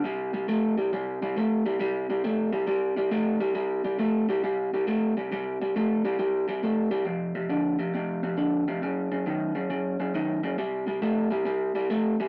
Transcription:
X:1
M:4/4
L:1/8
Q:"Swing" 1/4=137
K:F
V:1 name="Clean electric guitar" clef=bass
[C,G,] [C,G,] [C,A,] [C,G,] [C,G,] [C,G,] [C,A,] [C,G,] | [C,G,] [C,G,] [C,A,] [C,G,] [C,G,] [C,G,] [C,A,] [C,G,] | [C,G,] [C,G,] [C,A,] [C,G,] [C,G,] [C,G,] [C,A,] [C,G,] | [C,G,] [C,G,] [C,A,] [C,G,] [C,G,] [C,G,] [C,A,] [C,G,] |
[F,,C,] [F,,C,] [F,,D,] [F,,C,] [F,,C,] [F,,C,] [F,,D,] [F,,C,] | [^F,,^C,] [F,,C,] [F,,_E,] [F,,C,] [F,,C,] [F,,C,] [F,,E,] [F,,C,] | [C,G,] [C,G,] [C,A,] [C,G,] [C,G,] [C,G,] [C,A,] [C,G,] |]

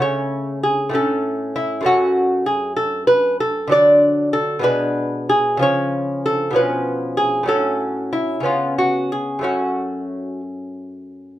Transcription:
X:1
M:6/8
L:1/8
Q:3/8=63
K:F#m
V:1 name="Lute"
c2 G A2 E | F2 G A B A | d2 A B2 G | c2 A B2 G |
A2 E ^E F G | F3 z3 |]
V:2 name="Lute" clef=bass
[C,A,C]3 [A,,A,C]3 | [F,,A,C]6 | [D,F,D]3 [B,,G,D]3 | [C,^E,C]3 [B,,E,C]3 |
[A,,F,C]3 [C,B,C]3 | [F,,A,C]6 |]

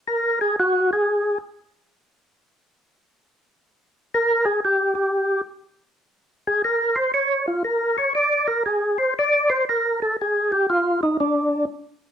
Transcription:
X:1
M:4/4
L:1/8
Q:"Swing" 1/4=119
K:Bbdor
V:1 name="Tonewheel organ"
B A _G A2 z3 | z8 | B A G G2 z3 | z A B c d F B d |
=d B A c d c B =A | A G F E =D2 z2 |]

